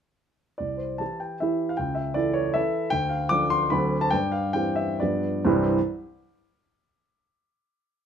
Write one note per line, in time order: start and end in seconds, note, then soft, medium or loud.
0.58 1.00 C2 soft
0.58 0.79 D5 medium
0.77 1.00 C5 soft
0.98 1.37 E3 soft
0.98 1.37 E4 soft
0.98 1.38 G4 soft
0.98 1.21 A5 medium
1.20 1.41 G5 medium
1.40 1.75 E3 soft
1.40 1.76 E4 soft
1.40 1.76 G4 medium
1.40 1.69 E5 medium
1.69 1.79 F5 medium
1.77 2.17 C#2 medium
1.77 1.97 G5 medium
1.95 2.16 E5 medium
2.14 2.52 E3 soft
2.14 2.52 E4 soft
2.14 2.52 A4 medium
2.14 2.36 D5 medium
2.34 2.55 C#5 medium
2.54 2.89 E3 medium
2.54 2.89 E4 medium
2.54 2.89 A4 medium
2.54 2.92 E5 medium
2.90 3.30 D2 medium
2.90 3.10 G5 loud
3.09 3.30 F5 medium
3.29 3.69 F3 soft
3.29 3.69 D4 medium
3.29 3.69 A4 medium
3.29 3.51 D6 loud
3.50 3.72 C6 loud
3.70 4.11 D2 medium
3.70 4.08 F#3 medium
3.70 4.09 C4 soft
3.70 4.09 A4 medium
3.70 4.02 B5 medium
4.01 4.12 A5 medium
4.10 4.53 G2 medium
4.10 4.32 G5 loud
4.32 4.54 F5 medium
4.53 4.96 E3 medium
4.53 4.97 C4 soft
4.53 4.97 G4 medium
4.53 4.77 G5 medium
4.76 4.99 E5 medium
5.00 5.44 G2 medium
5.00 5.43 F3 soft
5.00 5.44 B3 soft
5.00 5.44 G4 soft
5.00 5.46 D5 medium
5.45 5.68 C2 medium
5.45 5.69 G2 medium
5.45 5.69 E3 medium
5.45 5.69 G3 medium
5.45 5.69 C4 medium
5.45 5.69 E4 medium
5.45 5.68 C5 medium